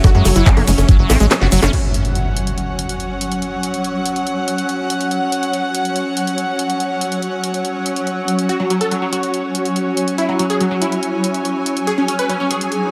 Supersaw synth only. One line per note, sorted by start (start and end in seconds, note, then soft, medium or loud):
0.04 0.09 F#4 loud
0.15 0.20 F#3 medium
0.25 0.30 F#3 medium
0.36 0.41 E4 loud
0.46 0.51 F#3 medium
0.57 0.62 F#3 medium
0.68 1.65 C#4 loud
8.49 8.54 F#4 loud
8.60 8.65 F#3 medium
8.70 8.75 F#3 medium
8.81 8.86 A4 medium
8.91 8.96 F#3 medium
9.02 9.07 F#3 medium
9.13 10.10 F#4 loud
10.18 10.23 E4 loud
10.29 10.34 F#3 medium
10.39 10.44 F#3 medium
10.50 10.55 G#4 medium
10.61 10.65 F#3 medium
10.71 10.76 F#3 medium
10.82 11.79 E4 loud
11.87 11.92 G#4 loud
11.98 12.03 C#4 medium
12.08 12.13 C#4 medium
12.19 12.24 B4 medium
12.30 12.34 C#4 medium
12.40 12.45 C#4 medium
12.51 12.91 G#4 loud